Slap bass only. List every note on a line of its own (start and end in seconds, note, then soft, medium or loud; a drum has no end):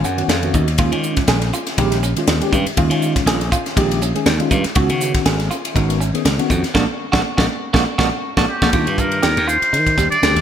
0.04 0.26 F#2 medium
0.28 0.51 F2 medium
0.54 0.76 D#2 medium
0.78 0.91 D#2 medium
0.92 1.15 D#3 medium
1.27 1.50 A#1 medium
1.78 2.13 A#1 loud
2.27 2.40 D#2 medium
2.52 2.65 G2 medium
2.66 muted slap bass stroke soft
2.77 2.89 D#2 medium
2.90 3.13 D#3 medium
3.26 3.49 A#1 medium
3.76 4.12 A#1 medium
4.26 4.38 D#2 medium
4.51 4.63 G2 medium
4.65 muted slap bass stroke soft
4.75 4.88 C#2 loud
4.89 5.12 C#3 medium
5.25 5.48 G#1 medium
5.76 6.11 G#1 medium
6.25 6.37 C#2 medium
6.50 6.62 F2 loud
6.63 muted slap bass stroke soft
6.75 6.85 A#1 medium
7.13 7.21 A#1 medium
7.38 7.46 A#1 medium
7.74 7.84 A#1 medium
7.99 8.09 A#1 medium
8.37 8.45 A#1 medium
8.62 8.70 A#1 medium
8.73 8.85 D#2 medium
8.87 9.20 G2 medium
9.23 9.36 D#2 medium
9.37 9.59 D#2 medium
9.62 muted slap bass stroke soft
9.73 9.95 D#3 medium
9.98 10.10 D#2 medium
10.12 muted slap bass stroke soft
10.23 10.35 D2 medium
10.36 10.41 D#2 medium